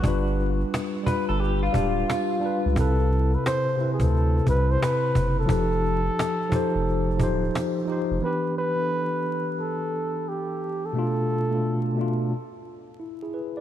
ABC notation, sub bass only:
X:1
M:4/4
L:1/16
Q:"Swing 16ths" 1/4=88
K:Clyd
V:1 name="Sub bass" clef=bass
G,,,4 z3 G,,,3 D,,,2 z3 ^C,, | C,,4 z3 D,,3 C,,2 z2 F,,,2 | =F,,,4 z3 F,,,3 D,,,2 z3 F,,, | z16 |
z16 |]